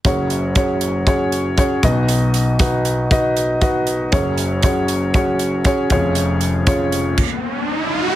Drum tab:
CC |--------|--------|--------|----x---|
HH |xxxxxxxx|xxxxxxxx|xxxxxxxx|xxxx----|
BD |o-o-o-oo|--o-o-o-|o-o-o-oo|--o-o---|